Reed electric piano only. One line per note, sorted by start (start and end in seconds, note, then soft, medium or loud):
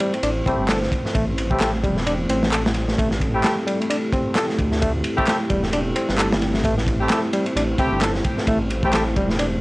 0.00 0.12 G3 medium
0.14 0.18 A3 medium
0.23 0.29 D4 loud
0.46 0.68 C4 medium
0.69 0.79 A4 medium
1.05 1.14 A3 medium
1.15 1.25 A3 medium
1.60 1.70 A4 medium
1.84 1.96 G3 loud
1.97 2.01 A3 medium
2.07 2.12 D4 medium
2.30 2.52 C4 medium
2.52 2.62 A4 loud
2.89 2.97 A3 medium
2.99 3.08 A3 medium
3.44 3.54 A4 loud
3.67 3.79 G3 loud
3.80 3.84 A3 medium
3.90 3.96 D4 loud
4.13 4.35 C4 loud
4.36 4.46 A4 loud
4.72 4.81 A3 medium
4.82 4.91 A3 medium
5.27 5.37 A4 medium
5.50 5.62 G3 loud
5.63 5.67 A3 medium
5.73 5.79 D4 loud
5.96 6.18 C4 medium
6.19 6.28 A4 loud
6.55 6.64 A3 medium
6.65 6.74 A3 medium
7.10 7.20 A4 loud
7.33 7.45 G3 loud
7.47 7.51 A3 medium
7.56 7.62 D4 loud
7.79 8.01 C4 loud
8.02 8.12 A4 loud
8.38 8.47 A3 medium
8.48 8.58 A3 medium
8.94 9.03 A4 loud
9.17 9.28 G3 medium
9.30 9.34 A3 medium
9.39 9.45 D4 loud